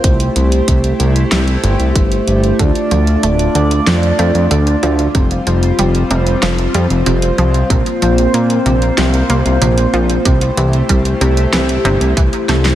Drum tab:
HH |xxxxxxxxxxxxxxxx|xxxxxxxxxxxxxxxx|xxxxxxxxxxxxxxxx|xxxxxxxxxxxxxxxx|
SD |--------o-------|--------o-------|--------o-------|--------o-------|
BD |o---o-------o---|o---------------|o---------------|o---------------|

HH |xxxxxxxxxxxxxxxx|
SD |--------o-----oo|
BD |o---o-------o---|